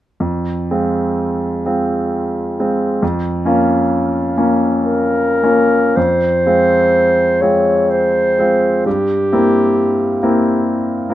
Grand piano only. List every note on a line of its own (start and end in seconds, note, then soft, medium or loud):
0.20 0.69 F2 soft
0.71 1.62 G#3 soft
0.71 1.62 C4 soft
0.71 1.62 F4 soft
1.65 2.55 G#3 soft
1.65 2.55 C4 soft
1.65 2.55 F4 soft
2.59 2.99 G#3 soft
2.59 2.99 C4 soft
2.59 2.99 F4 soft
3.02 3.43 F2 soft
3.45 4.31 A#3 soft
3.45 4.32 C#4 soft
3.45 4.32 F4 soft
4.37 5.39 A#3 soft
4.37 5.39 C#4 soft
4.37 5.40 F4 soft
5.43 5.93 A#3 soft
5.43 5.93 C#4 soft
5.43 5.93 F4 soft
5.97 6.45 F2 soft
6.46 7.38 G#3 soft
6.46 7.38 C4 soft
6.46 7.38 F4 soft
7.42 8.34 G#3 soft
7.42 8.34 C4 soft
7.42 8.34 F4 soft
8.39 8.82 G#3 soft
8.39 8.82 C4 soft
8.39 8.83 F4 soft
8.86 9.31 G2 soft
9.33 10.18 A#3 soft
9.33 10.18 C4 soft
9.33 10.18 E4 soft
10.23 11.06 A#3 soft
10.23 11.07 C4 soft
10.23 11.07 E4 soft
11.09 11.14 A#3 soft
11.09 11.14 C4 soft
11.09 11.14 E4 soft